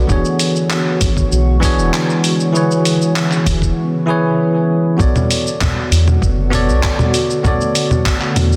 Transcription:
Already playing: ambient pad D3, tine electric piano B3 F#4 A4 C#5 D5
0.07 analog synth bass E1, tine electric piano E3 B3 D4 F#4 G#4, ambient pad G#3 F#4 C#5, kick, cabasa
0.12 tine electric piano C#5
0.25 cabasa
0.39 open hi-hat, cabasa
0.56 cabasa
0.70 clap, cabasa
1.01 analog synth bass G#1, kick, open hi-hat, cabasa
1.17 kick, cabasa
1.32 analog synth bass B1, cabasa
1.60 tine electric piano E3 B3 D4 F#4 G#4, kick, open hi-hat, cabasa
1.65 tine electric piano C#5
1.78 analog synth bass E1, cabasa
1.94 clap, cabasa
2.10 cabasa
2.24 open hi-hat, cabasa
2.40 cabasa
2.52 tine electric piano E3 E4 G#4 B4, cabasa
2.57 tine electric piano C#5
2.71 cabasa
2.85 open hi-hat, cabasa
3.02 cabasa
3.16 clap, cabasa
3.32 clap, cabasa
3.46 analog synth bass E1, kick, open hi-hat, cabasa
3.62 kick, cabasa
4.06 tine electric piano E3 E4 G#4 B4
4.10 tine electric piano C#5
4.97 analog synth bass B1, ambient pad D3 A3 B3 F#4, tine electric piano B3 F#4 A4 C#5, kick, cabasa
5.01 tine electric piano D5
5.16 low conga, cabasa
5.31 open hi-hat, cabasa
5.47 cabasa
5.61 kick, clap, low conga, cabasa
5.92 analog synth bass E2, open hi-hat, cabasa
6.08 low conga, cabasa
6.22 analog synth bass F#1, kick, cabasa
6.50 tine electric piano B3 F#4 A4 C#5, open hi-hat, low conga, cabasa
6.55 tine electric piano D5
6.69 analog synth bass B1, cabasa
6.83 kick, clap, cabasa
6.99 low conga, cabasa
7.14 open hi-hat, cabasa
7.30 cabasa
7.43 tine electric piano B3 F#4 A4 C#5, kick, low conga, cabasa
7.48 tine electric piano D5
7.61 cabasa
7.75 open hi-hat, cabasa
7.91 low conga, cabasa
8.06 kick, clap, cabasa
8.21 clap
8.36 analog synth bass E2, open hi-hat, low conga, cabasa
8.52 cabasa

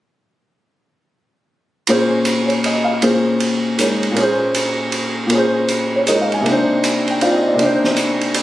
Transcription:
1.87 upright piano A#2 A#3 C#4 G#4 C5, ride
2.25 hi-hat pedal, ride
2.46 upright piano C#5, ride
2.64 upright piano D#5, ride
2.84 upright piano F5
3.02 upright piano A#2 A#3 C#4 G#4 C5, ride
3.40 ride
3.77 upright piano G#3 D#4 A#4 C#5, hi-hat pedal, ride
4.03 ride
4.11 upright piano A#2 A#3
4.16 upright piano C#4 G#4, ride
4.22 upright piano C5
4.55 hi-hat pedal, ride
4.92 ride
5.27 upright piano A#2 A#3, ride
5.32 upright piano C#4 G#4
5.38 upright piano C5
5.68 hi-hat pedal, ride
5.96 upright piano C#5
6.07 upright piano G#3 D#4 A#4 C#5 D#5, hi-hat pedal, ride
6.21 upright piano F5
6.32 upright piano G#5, ride
6.41 upright piano C3 A#3
6.46 upright piano D4 D#4, ride
6.52 upright piano C5
6.84 hi-hat pedal, ride
7.08 upright piano G5, ride
7.21 upright piano C4 D#4 F4 D5 F5, ride
7.36 upright piano D#5
7.47 upright piano D5
7.54 upright piano C3 A#3
7.59 upright piano D4 D#4, ride
7.65 upright piano C5
7.84 snare
7.97 hi-hat pedal, ride
8.21 ride
8.34 hi-hat pedal, ride

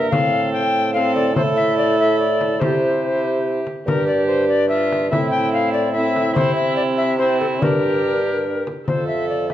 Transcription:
Already playing: viola A#4
0.10 bassoon A2, trombone C4, viola A4, recorder F5, frame drum
0.53 recorder G5
0.94 trombone C4, viola A4, recorder F5
1.15 recorder D5, frame drum
1.35 trombone E4, viola A4, recorder C5, frame drum
1.57 recorder E5
1.78 recorder D5
2.00 recorder E5
2.19 recorder D5
2.41 frame drum
2.60 bassoon C3, trombone E4, viola G4, recorder C5, frame drum
3.67 frame drum
3.86 bassoon G2, trombone D4, viola G4, recorder A#4, frame drum
4.08 recorder D5
4.27 recorder C5
4.48 recorder D5
4.69 viola F4, recorder E5
4.92 frame drum
5.11 bassoon A2, trombone C4, viola E4, recorder E5, frame drum
5.31 recorder G5
5.53 recorder F5
5.72 recorder D5
5.92 trombone C4, viola E4, recorder E5
6.16 frame drum
6.35 bassoon C3, trombone C4, viola E4, recorder C5, frame drum
6.55 recorder E5
6.76 recorder D5
6.98 recorder E5
7.18 trombone C4, viola E4, recorder C5
7.40 recorder A4, frame drum
7.61 bassoon G2, trombone D4, viola G4, recorder A#4, frame drum
8.67 frame drum
8.87 bassoon F2, trombone F4, viola A4, recorder C5, frame drum
9.07 recorder E5
9.29 recorder D5
9.49 recorder E5, frame drum

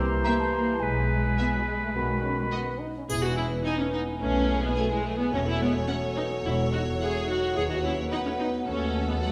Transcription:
Already playing: double bass section C2, bassoon E3, french horn section A#3 E4, clarinet G4, oboe C5, flute section A#5, celesta C6
0.24 cello section A#3, viola section A#3, violin section G4 E5, celesta A#5
0.39 cello section A3, celesta A5
0.53 cello section A#3, celesta A#5
0.74 celesta A5
0.80 double bass section B1, cello section G#3, french horn section G#3, clarinet G#4, oboe B4, celesta G#5, flute section G#5
1.38 french horn section E3, viola section B3, violin section G#4 E5
1.54 french horn section F#3
1.68 french horn section G#3
1.83 french horn section A3
1.95 double bass section B1, bassoon D#3, french horn section B3, clarinet F#4, flute section B5
2.23 french horn section C#4
2.51 french horn section B3, viola section B3, violin section F#4 D#5
2.79 french horn section D#4
2.97 french horn section C#4
3.09 double bass section E1, cello section E2, bassoon E3, french horn section E4, viola section G#4, clarinet B4, flute section G#5, triangle
3.23 french horn section D#4, viola section F#4
3.37 french horn section C#4, viola section E4
3.64 french horn section B3, viola section D#4, violin section G#5
3.79 french horn section A3, viola section C#4
3.93 french horn section B3, viola section D#4
4.19 double bass section B1, cello section B2, french horn section A3, viola section C#4, violin section G#4
4.62 french horn section G#3, viola section B3
4.76 french horn section F#3, viola section A3, violin section G#5
4.91 french horn section E3, viola section G#3
5.05 french horn section F#3, viola section A3
5.19 french horn section G#3, viola section B3
5.32 double bass section E1, cello section E2, bassoon F#3, french horn section A3, viola section C#4, clarinet A4, violin section C#5
5.47 french horn section C#4, viola section E4
5.60 french horn section G#3, viola section B3
5.87 french horn section A3, viola section C#4, violin section F#5
6.16 french horn section B3, viola section D#4
6.44 double bass section E1, cello section E2, french horn section C#4, viola section E4, flute section F#5
6.70 french horn section D#4, viola section F#4
6.98 french horn section E4, viola section G#4, violin section F#5
7.27 french horn section D#4, viola section F#4
7.54 cello section D#2, double bass section D#2, french horn section E4, viola section G#4, clarinet B4
7.68 french horn section D#4, viola section F#4
7.82 french horn section C#4, viola section E4
8.10 french horn section B3, viola section D#4, violin section B4 F#5
8.24 french horn section A3, viola section C#4
8.38 french horn section B3, viola section D#4
8.66 double bass section D#2, cello section D#2, french horn section A3, viola section C#4, violin section A4
9.07 french horn section G#3, viola section B3
9.21 french horn section F#3, viola section A3, violin section F#5

